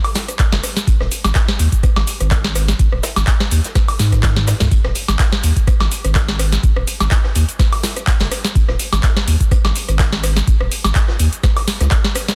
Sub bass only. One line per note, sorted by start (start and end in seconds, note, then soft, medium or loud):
0.52 0.60 F#1 loud
0.87 0.96 G#1 loud
1.00 1.08 D#1 loud
1.25 1.32 G#1 medium
1.59 1.68 D#2 medium
1.96 2.04 G#1 medium
2.20 2.74 G#1 medium
2.79 2.88 G#1 loud
2.92 3.00 D#1 medium
3.16 3.24 G#1 medium
3.51 3.60 D#2 medium
3.99 4.54 G#2 medium
4.60 4.68 C#2 loud
4.71 4.80 G#1 loud
4.85 4.92 D#1 loud
5.09 5.16 G#1 medium
5.43 5.52 D#2 medium
5.80 5.88 G#1 medium
6.05 6.58 G#1 medium
6.63 6.72 G#1 loud
6.76 6.84 D#1 loud
7.01 7.08 G#1 medium
7.36 7.44 D#2 medium
8.21 8.28 F#1 loud
8.55 8.64 G#1 loud
8.68 8.76 D#1 medium
8.92 9.00 G#1 medium
9.27 9.36 D#2 medium
9.64 9.72 G#1 loud
9.88 10.42 G#1 medium
10.47 10.56 G#1 loud
10.61 10.68 D#1 loud
10.84 10.92 G#1 medium
11.20 11.28 D#2 medium
11.80 11.88 C#2 loud